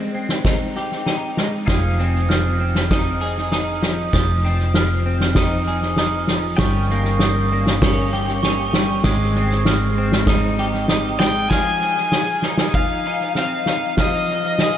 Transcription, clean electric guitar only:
0.00 1.37 G#3 soft
0.00 0.14 C4 soft
0.15 1.99 C4 soft
0.46 1.06 D#4 soft
0.76 1.69 G4 soft
1.07 1.72 D#4 soft
1.38 1.69 G#3 soft
1.69 2.29 F3 soft
1.99 2.59 C4 soft
2.30 3.81 F3 soft
2.61 4.14 C4 soft
2.92 3.51 D#4 medium
3.21 4.75 G#4 soft
3.52 5.06 D#4 soft
3.83 4.13 F3 soft
4.14 4.74 F3 soft
4.44 5.05 C4 soft
4.75 6.29 F3 soft
5.06 6.60 C4 soft
5.37 5.97 D#4 medium
5.68 6.60 G#4 soft
5.98 6.60 D#4 soft
6.30 6.60 F3 soft
6.61 7.21 G3 medium
6.91 7.51 A#3 medium
7.22 8.74 G3 soft
7.52 9.06 A#3 medium
7.83 8.43 C#4 medium
8.13 9.05 G4 medium
8.45 9.06 C#4 soft
8.76 9.05 G3 soft
9.06 9.66 G#3 medium
9.37 9.97 C4 medium
9.67 11.19 G#3 medium
9.98 11.52 C4 medium
10.29 10.88 D#4 medium
10.59 11.52 G4 medium
10.90 11.51 D#4 soft
11.20 11.51 G#3 soft
11.51 12.75 F3 soft
12.13 13.67 G#4 soft
12.44 13.06 D#4 soft
12.76 13.97 F3 soft
13.07 13.66 D#4 soft
13.37 14.78 C4 soft
13.67 14.78 D#4 soft
13.99 14.78 F3 medium
14.61 14.78 G#4 soft

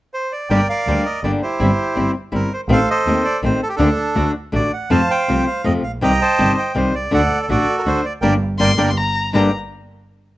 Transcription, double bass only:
0.50 0.66 G1 medium
0.87 1.02 D2 medium
1.23 1.39 G1 medium
1.60 1.76 G1 medium
1.97 2.12 G1 medium
2.33 2.48 G1 medium
2.68 2.84 A1 medium
3.05 3.21 D#2 medium
3.43 3.58 A1 medium
3.79 3.95 D2 medium
4.16 4.32 D2 medium
4.54 4.69 A1 medium
4.91 5.07 F2 medium
5.29 5.45 C2 medium
5.66 5.81 F2 medium
5.84 6.03 A#1 soft
6.03 6.18 C2 medium
6.40 6.55 G1 medium
6.76 6.91 C2 medium
6.94 7.11 C2 soft
7.12 7.27 D2 medium
7.49 7.65 A1 medium
7.86 8.01 D2 medium
8.22 8.36 G1 medium
8.59 8.73 G1 medium
8.77 8.92 G1 medium
9.34 9.50 G1 soft

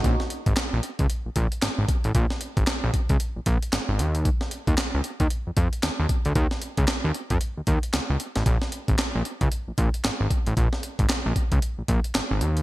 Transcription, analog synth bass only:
0.04 0.16 A#1 loud
0.47 0.54 G#1 medium
0.73 0.81 A#1 loud
0.99 1.07 C#2 medium
1.26 1.30 A#1 soft
1.36 1.47 A#1 medium
1.63 1.69 G#1 soft
1.78 1.86 G#1 medium
2.05 2.12 A1 medium
2.15 2.26 A#1 loud
2.57 2.65 G#1 medium
2.84 2.91 A#1 loud
3.10 3.17 C#2 medium
3.36 3.40 A#1 soft
3.47 3.58 A#1 loud
3.73 3.79 G#1 soft
3.89 4.01 G#1 medium
3.99 4.30 D#2 loud
4.68 4.75 D#2 loud
4.94 5.02 C#2 medium
5.20 5.28 D#2 medium
5.47 5.51 F2 medium
5.57 5.68 F2 loud
5.84 5.90 D#2 soft
6.00 6.07 D#2 medium
6.26 6.33 D2 medium
6.36 6.47 D#2 loud
6.78 6.85 C#2 medium
7.04 7.12 D#2 loud
7.31 7.38 F2 medium
7.57 7.61 D#2 soft
7.67 7.79 D#2 medium
7.94 8.00 C#2 soft
8.10 8.17 C#2 loud
8.36 8.44 A1 medium
8.46 8.58 A#1 loud
8.89 8.96 G#1 loud
9.15 9.23 A#1 medium
9.41 9.49 C#2 medium
9.68 9.72 A#1 soft
9.78 9.89 A#1 medium
10.05 10.11 G#1 soft
10.21 10.28 G#1 medium
10.47 10.54 A1 medium
10.57 10.68 A#1 loud
10.99 11.07 G#1 medium
11.26 11.33 A#1 loud
11.52 11.59 C#2 medium
11.78 11.83 A#1 medium
11.89 12.00 A#1 loud
12.15 12.21 G#1 soft
12.31 12.43 G#1 loud
12.41 12.62 D#2 loud

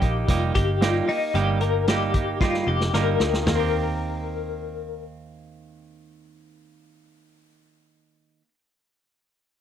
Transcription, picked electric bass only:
0.02 0.24 A#1 medium
0.28 0.51 F1 medium
0.55 1.00 G1 loud
1.34 2.63 G1 loud
2.67 2.90 F1 medium
2.94 3.16 G1 loud
3.20 3.43 D2 medium
3.46 8.41 D#2 loud

